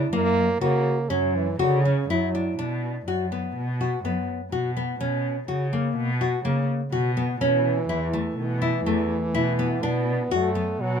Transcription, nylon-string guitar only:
0, 0, Header, 1, 2, 480
1, 0, Start_track
1, 0, Key_signature, 2, "minor"
1, 0, Tempo, 490196
1, 125, Time_signature, 5, 2, 24, 8
1, 3488, Tempo, 482703
1, 10884, End_track
2, 0, Start_track
2, 0, Title_t, "Nylon-string guitar"
2, 0, Program_c, 0, 24
2, 124, Note_on_c, 0, 58, 85
2, 469, Note_off_c, 0, 58, 0
2, 601, Note_on_c, 0, 66, 69
2, 949, Note_off_c, 0, 66, 0
2, 1077, Note_on_c, 0, 61, 71
2, 1430, Note_off_c, 0, 61, 0
2, 1560, Note_on_c, 0, 66, 70
2, 1738, Note_off_c, 0, 66, 0
2, 1815, Note_on_c, 0, 61, 66
2, 1990, Note_off_c, 0, 61, 0
2, 2058, Note_on_c, 0, 64, 68
2, 2232, Note_off_c, 0, 64, 0
2, 2298, Note_on_c, 0, 62, 60
2, 2471, Note_off_c, 0, 62, 0
2, 2533, Note_on_c, 0, 62, 71
2, 2880, Note_off_c, 0, 62, 0
2, 3013, Note_on_c, 0, 66, 60
2, 3186, Note_off_c, 0, 66, 0
2, 3250, Note_on_c, 0, 59, 58
2, 3597, Note_off_c, 0, 59, 0
2, 3731, Note_on_c, 0, 66, 56
2, 3905, Note_off_c, 0, 66, 0
2, 3971, Note_on_c, 0, 59, 62
2, 4319, Note_off_c, 0, 59, 0
2, 4444, Note_on_c, 0, 66, 64
2, 4620, Note_off_c, 0, 66, 0
2, 4685, Note_on_c, 0, 59, 62
2, 4860, Note_off_c, 0, 59, 0
2, 4923, Note_on_c, 0, 61, 77
2, 5273, Note_off_c, 0, 61, 0
2, 5397, Note_on_c, 0, 66, 60
2, 5575, Note_off_c, 0, 66, 0
2, 5642, Note_on_c, 0, 58, 62
2, 5991, Note_off_c, 0, 58, 0
2, 6121, Note_on_c, 0, 66, 67
2, 6296, Note_off_c, 0, 66, 0
2, 6358, Note_on_c, 0, 58, 73
2, 6705, Note_off_c, 0, 58, 0
2, 6831, Note_on_c, 0, 66, 71
2, 7007, Note_off_c, 0, 66, 0
2, 7074, Note_on_c, 0, 59, 67
2, 7249, Note_off_c, 0, 59, 0
2, 7315, Note_on_c, 0, 61, 79
2, 7664, Note_off_c, 0, 61, 0
2, 7793, Note_on_c, 0, 64, 68
2, 7969, Note_off_c, 0, 64, 0
2, 8034, Note_on_c, 0, 57, 66
2, 8383, Note_off_c, 0, 57, 0
2, 8514, Note_on_c, 0, 64, 73
2, 8690, Note_off_c, 0, 64, 0
2, 8759, Note_on_c, 0, 57, 75
2, 9109, Note_off_c, 0, 57, 0
2, 9239, Note_on_c, 0, 64, 75
2, 9415, Note_off_c, 0, 64, 0
2, 9481, Note_on_c, 0, 59, 71
2, 9656, Note_off_c, 0, 59, 0
2, 9721, Note_on_c, 0, 62, 86
2, 10071, Note_off_c, 0, 62, 0
2, 10201, Note_on_c, 0, 66, 74
2, 10377, Note_off_c, 0, 66, 0
2, 10439, Note_on_c, 0, 59, 67
2, 10794, Note_off_c, 0, 59, 0
2, 10884, End_track
0, 0, End_of_file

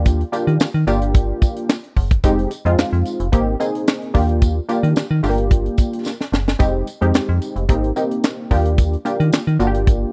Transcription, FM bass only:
0, 0, Header, 1, 2, 480
1, 0, Start_track
1, 0, Tempo, 545455
1, 49, Time_signature, 4, 2, 24, 8
1, 8910, End_track
2, 0, Start_track
2, 0, Title_t, "FM bass"
2, 0, Program_c, 0, 39
2, 0, Note_on_c, 0, 39, 85
2, 210, Note_off_c, 0, 39, 0
2, 416, Note_on_c, 0, 51, 87
2, 510, Note_off_c, 0, 51, 0
2, 532, Note_on_c, 0, 51, 47
2, 582, Note_off_c, 0, 51, 0
2, 655, Note_on_c, 0, 51, 85
2, 750, Note_off_c, 0, 51, 0
2, 768, Note_on_c, 0, 31, 110
2, 1168, Note_off_c, 0, 31, 0
2, 1729, Note_on_c, 0, 30, 99
2, 1929, Note_off_c, 0, 30, 0
2, 1969, Note_on_c, 0, 29, 102
2, 2169, Note_off_c, 0, 29, 0
2, 2333, Note_on_c, 0, 41, 82
2, 2429, Note_off_c, 0, 41, 0
2, 2447, Note_on_c, 0, 41, 51
2, 2499, Note_off_c, 0, 41, 0
2, 2575, Note_on_c, 0, 41, 92
2, 2670, Note_off_c, 0, 41, 0
2, 2816, Note_on_c, 0, 29, 91
2, 2910, Note_off_c, 0, 29, 0
2, 2929, Note_on_c, 0, 32, 89
2, 3129, Note_off_c, 0, 32, 0
2, 3650, Note_on_c, 0, 39, 75
2, 4049, Note_off_c, 0, 39, 0
2, 4253, Note_on_c, 0, 51, 85
2, 4349, Note_off_c, 0, 51, 0
2, 4370, Note_on_c, 0, 51, 46
2, 4421, Note_off_c, 0, 51, 0
2, 4494, Note_on_c, 0, 51, 96
2, 4589, Note_off_c, 0, 51, 0
2, 4606, Note_on_c, 0, 31, 106
2, 5007, Note_off_c, 0, 31, 0
2, 5565, Note_on_c, 0, 30, 81
2, 5767, Note_off_c, 0, 30, 0
2, 5807, Note_on_c, 0, 29, 102
2, 6008, Note_off_c, 0, 29, 0
2, 6175, Note_on_c, 0, 41, 87
2, 6270, Note_off_c, 0, 41, 0
2, 6287, Note_on_c, 0, 41, 50
2, 6338, Note_off_c, 0, 41, 0
2, 6414, Note_on_c, 0, 41, 97
2, 6509, Note_off_c, 0, 41, 0
2, 6652, Note_on_c, 0, 29, 90
2, 6748, Note_off_c, 0, 29, 0
2, 6767, Note_on_c, 0, 32, 93
2, 6968, Note_off_c, 0, 32, 0
2, 7487, Note_on_c, 0, 39, 87
2, 7888, Note_off_c, 0, 39, 0
2, 8096, Note_on_c, 0, 51, 97
2, 8190, Note_off_c, 0, 51, 0
2, 8208, Note_on_c, 0, 51, 48
2, 8259, Note_off_c, 0, 51, 0
2, 8336, Note_on_c, 0, 51, 97
2, 8430, Note_off_c, 0, 51, 0
2, 8445, Note_on_c, 0, 31, 111
2, 8847, Note_off_c, 0, 31, 0
2, 8910, End_track
0, 0, End_of_file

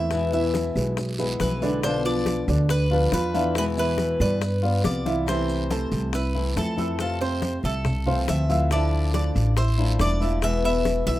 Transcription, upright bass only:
0, 0, Header, 1, 2, 480
1, 0, Start_track
1, 0, Tempo, 429799
1, 121, Time_signature, 4, 2, 24, 8
1, 12504, End_track
2, 0, Start_track
2, 0, Title_t, "Upright bass"
2, 0, Program_c, 0, 32
2, 0, Note_on_c, 0, 40, 93
2, 776, Note_off_c, 0, 40, 0
2, 844, Note_on_c, 0, 35, 97
2, 1522, Note_off_c, 0, 35, 0
2, 1569, Note_on_c, 0, 35, 94
2, 2703, Note_off_c, 0, 35, 0
2, 2769, Note_on_c, 0, 38, 106
2, 3446, Note_off_c, 0, 38, 0
2, 3491, Note_on_c, 0, 40, 89
2, 4624, Note_off_c, 0, 40, 0
2, 4691, Note_on_c, 0, 43, 106
2, 5368, Note_off_c, 0, 43, 0
2, 5411, Note_on_c, 0, 36, 83
2, 6544, Note_off_c, 0, 36, 0
2, 6608, Note_on_c, 0, 36, 103
2, 7286, Note_off_c, 0, 36, 0
2, 7327, Note_on_c, 0, 41, 84
2, 8460, Note_off_c, 0, 41, 0
2, 8529, Note_on_c, 0, 36, 98
2, 9204, Note_off_c, 0, 36, 0
2, 9247, Note_on_c, 0, 38, 88
2, 10377, Note_off_c, 0, 38, 0
2, 10448, Note_on_c, 0, 33, 99
2, 11121, Note_off_c, 0, 33, 0
2, 11162, Note_on_c, 0, 28, 85
2, 12291, Note_off_c, 0, 28, 0
2, 12357, Note_on_c, 0, 35, 88
2, 12504, Note_off_c, 0, 35, 0
2, 12504, End_track
0, 0, End_of_file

